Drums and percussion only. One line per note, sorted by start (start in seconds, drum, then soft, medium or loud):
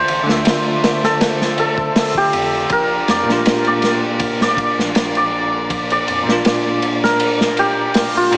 0.08 ride medium
0.29 snare soft
0.45 snare loud
0.45 ride loud
0.84 snare loud
0.84 ride medium
1.04 snare soft
1.21 snare loud
1.21 ride medium
1.41 snare medium
1.58 ride medium
1.78 kick medium
1.96 snare loud
1.96 open hi-hat medium
2.15 kick loud
2.33 ride medium
2.70 kick loud
2.70 ride medium
3.08 snare medium
3.08 ride medium
3.29 snare soft
3.46 snare loud
3.46 ride medium
3.64 ride soft
3.82 snare medium
3.82 ride medium
4.20 kick loud
4.20 ride medium
4.41 snare medium
4.57 kick medium
4.57 ride medium
4.79 snare soft
4.95 snare loud
4.95 ride medium
5.15 ride soft
5.70 kick loud
5.70 ride medium
5.90 ride medium
6.08 ride medium
6.29 snare medium
6.45 snare loud
6.45 ride loud
6.82 ride medium
7.04 snare soft
7.20 ride medium
7.41 snare medium
7.57 ride medium
7.94 snare loud
7.94 open hi-hat medium
8.32 ride medium